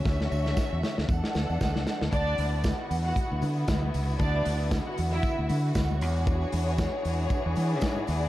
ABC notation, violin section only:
X:1
M:4/4
L:1/16
Q:"Swing 16ths" 1/4=116
K:Dlyd
V:1 name="Violin section"
z16 | [Dd]4 z [Ff] z [Ff]3 z6 | [Dd]4 z [Ff] z [Ee]3 z6 | z16 |]